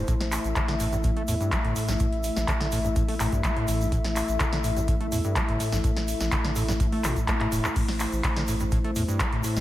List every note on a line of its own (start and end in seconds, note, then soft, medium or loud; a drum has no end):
0.00 9.61 A3 medium
0.00 9.61 E4 medium
0.08 0.15 A2 loud
0.08 7.75 E5 medium
0.08 kick loud
0.08 closed hi-hat medium
0.08 shaker soft
0.20 0.38 A1 loud
0.20 snare medium
0.20 closed hi-hat soft
0.32 clap medium
0.32 open hi-hat loud
0.32 shaker loud
0.44 0.53 A1 loud
0.44 closed hi-hat soft
0.44 shaker soft
0.56 0.60 D3 loud
0.56 kick loud
0.56 clap loud
0.56 closed hi-hat medium
0.56 shaker soft
0.68 1.23 A1 medium
0.68 0.75 D3 loud
0.68 snare medium
0.68 closed hi-hat soft
0.80 0.87 A2 loud
0.80 open hi-hat loud
0.80 shaker medium
0.92 0.96 G2 medium
0.92 closed hi-hat soft
0.92 shaker soft
1.03 1.11 A2 loud
1.03 kick loud
1.03 closed hi-hat medium
1.03 shaker soft
1.16 1.23 A3 loud
1.16 closed hi-hat soft
1.28 1.37 E2 medium
1.28 1.35 A2 loud
1.28 open hi-hat loud
1.28 shaker loud
1.40 1.54 G2 loud
1.40 closed hi-hat soft
1.40 shaker medium
1.52 1.59 A3 medium
1.52 kick loud
1.52 clap loud
1.52 closed hi-hat medium
1.52 shaker soft
1.64 1.73 G1 medium
1.64 1.74 A2 loud
1.64 closed hi-hat soft
1.76 1.90 A2 medium
1.76 open hi-hat loud
1.76 shaker medium
1.88 1.97 A1 loud
1.88 1.95 G2 medium
1.88 snare medium
1.88 shaker medium
1.99 2.07 A2 loud
1.99 kick loud
1.99 closed hi-hat medium
1.99 shaker soft
2.12 2.30 A1 loud
2.12 closed hi-hat soft
2.24 open hi-hat loud
2.24 shaker medium
2.37 2.45 A1 loud
2.37 snare medium
2.37 shaker medium
2.48 2.52 D3 loud
2.48 kick loud
2.48 clap loud
2.48 closed hi-hat medium
2.48 shaker soft
2.60 3.15 A1 medium
2.60 2.67 D3 loud
2.60 snare medium
2.60 closed hi-hat soft
2.72 2.79 A2 loud
2.72 open hi-hat loud
2.72 shaker medium
2.84 2.88 G2 medium
2.84 closed hi-hat soft
2.84 shaker soft
2.96 3.03 A2 loud
2.96 kick loud
2.96 closed hi-hat loud
2.96 shaker soft
3.08 3.15 A3 loud
3.08 open hi-hat medium
3.20 3.29 A1 medium
3.20 3.27 A2 loud
3.20 clap medium
3.20 open hi-hat loud
3.20 shaker medium
3.32 3.46 G2 loud
3.32 kick medium
3.32 closed hi-hat soft
3.32 shaker medium
3.44 3.51 A3 medium
3.44 kick loud
3.44 clap loud
3.44 closed hi-hat medium
3.44 shaker soft
3.57 3.66 A2 loud
3.57 closed hi-hat soft
3.68 4.00 A1 medium
3.68 3.82 A2 medium
3.68 open hi-hat loud
3.68 shaker medium
3.81 3.87 G2 medium
3.81 shaker medium
3.92 3.99 A2 loud
3.92 kick loud
3.92 closed hi-hat medium
3.92 shaker soft
4.04 4.22 A1 loud
4.04 snare medium
4.04 closed hi-hat soft
4.16 clap medium
4.16 open hi-hat loud
4.16 shaker medium
4.28 4.37 A1 loud
4.28 closed hi-hat soft
4.28 shaker soft
4.40 4.44 D3 loud
4.40 kick loud
4.40 clap loud
4.40 closed hi-hat medium
4.40 shaker soft
4.52 5.07 A1 medium
4.52 4.59 D3 loud
4.52 snare medium
4.52 closed hi-hat soft
4.64 4.71 A2 loud
4.64 open hi-hat loud
4.64 shaker medium
4.76 4.80 G2 medium
4.76 closed hi-hat soft
4.76 shaker medium
4.88 4.95 A2 loud
4.88 kick loud
4.88 closed hi-hat medium
4.88 shaker soft
5.00 5.07 A3 loud
5.00 closed hi-hat soft
5.12 5.21 E2 medium
5.12 5.19 A2 loud
5.12 open hi-hat loud
5.12 shaker medium
5.24 5.38 G2 loud
5.24 closed hi-hat soft
5.24 shaker medium
5.36 5.43 A3 medium
5.36 kick loud
5.36 clap loud
5.36 closed hi-hat loud
5.36 shaker soft
5.49 5.57 G1 medium
5.49 5.58 A2 loud
5.49 closed hi-hat soft
5.60 5.74 A2 medium
5.60 open hi-hat loud
5.60 shaker medium
5.72 5.81 A1 loud
5.72 5.79 G2 medium
5.72 snare medium
5.72 shaker soft
5.84 5.91 A2 loud
5.84 kick loud
5.84 closed hi-hat loud
5.84 shaker soft
5.97 6.14 A1 loud
5.97 snare medium
5.97 closed hi-hat soft
6.08 open hi-hat loud
6.08 shaker loud
6.20 6.29 A1 loud
6.20 snare medium
6.20 closed hi-hat soft
6.20 shaker medium
6.32 6.36 D3 loud
6.32 kick loud
6.32 clap loud
6.32 closed hi-hat loud
6.32 shaker soft
6.44 6.99 A1 medium
6.44 6.51 D3 loud
6.44 snare medium
6.44 closed hi-hat soft
6.56 6.63 A2 loud
6.56 open hi-hat loud
6.56 shaker medium
6.68 6.72 G2 medium
6.68 snare medium
6.68 shaker soft
6.80 6.87 A2 loud
6.80 kick loud
6.80 closed hi-hat loud
6.80 shaker soft
6.92 7.06 A3 loud
6.92 open hi-hat medium
7.04 7.13 A1 medium
7.04 7.18 A#2 medium
7.04 clap medium
7.04 open hi-hat loud
7.04 shaker medium
7.16 7.30 A2 medium
7.16 kick medium
7.16 closed hi-hat soft
7.16 shaker medium
7.28 7.35 C4 medium
7.28 kick loud
7.28 clap loud
7.28 closed hi-hat loud
7.28 shaker soft
7.40 7.47 A2 loud
7.40 clap medium
7.40 closed hi-hat soft
7.52 7.61 E1 medium
7.52 7.66 A2 medium
7.52 open hi-hat loud
7.52 shaker medium
7.64 7.68 A1 medium
7.64 clap loud
7.64 closed hi-hat soft
7.64 shaker medium
7.76 7.83 A2 loud
7.76 9.61 C5 medium
7.76 kick loud
7.76 closed hi-hat loud
7.76 crash medium
7.76 shaker soft
7.88 8.06 A1 loud
7.88 snare medium
7.88 closed hi-hat soft
8.00 clap medium
8.00 open hi-hat loud
8.00 shaker loud
8.12 8.21 A1 loud
8.12 closed hi-hat soft
8.12 shaker medium
8.24 8.28 D3 loud
8.24 kick loud
8.24 clap loud
8.24 closed hi-hat medium
8.24 shaker soft
8.36 8.91 A1 medium
8.36 8.43 D3 loud
8.36 snare medium
8.36 closed hi-hat soft
8.48 8.55 A2 loud
8.48 open hi-hat loud
8.48 shaker medium
8.60 8.64 G2 medium
8.60 closed hi-hat soft
8.60 shaker medium
8.71 8.79 A2 loud
8.71 kick loud
8.71 closed hi-hat medium
8.71 shaker soft
8.84 8.91 A3 loud
8.84 closed hi-hat soft
8.96 9.05 E2 medium
8.96 9.03 A2 loud
8.96 open hi-hat loud
8.96 shaker medium
9.08 9.21 G2 loud
9.08 closed hi-hat soft
9.08 shaker medium
9.20 9.27 A3 medium
9.20 kick loud
9.20 clap loud
9.20 closed hi-hat loud
9.20 shaker soft
9.32 9.41 G1 medium
9.32 9.42 A2 loud
9.32 closed hi-hat soft
9.44 9.58 A2 medium
9.44 open hi-hat loud
9.44 shaker loud
9.56 9.61 A1 loud
9.56 9.61 G2 medium
9.56 snare medium
9.56 shaker medium